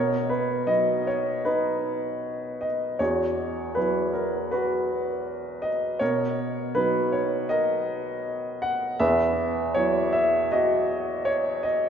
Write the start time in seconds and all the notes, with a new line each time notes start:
Already playing: B2 A#4 C#5
0.30 B4
0.67 F#3 B3 D#4 D#5
1.07 C#5
1.45 D#4 B4
2.61 D#5
2.99 E2 F#4 C#5
3.75 F#3 B3 E4 B4
4.13 A#4
4.51 F#4 B4
5.62 D#5
5.99 B2 A#4 C#5
6.75 F#3 B3 D#4 B4
7.12 C#5
7.49 A#4 D#5
8.62 F#5
9.00 E2 B4 E5
9.75 F#3 B3 E4 C#5
10.13 E5
10.52 F#4 D#5
11.25 C#5
11.63 D#5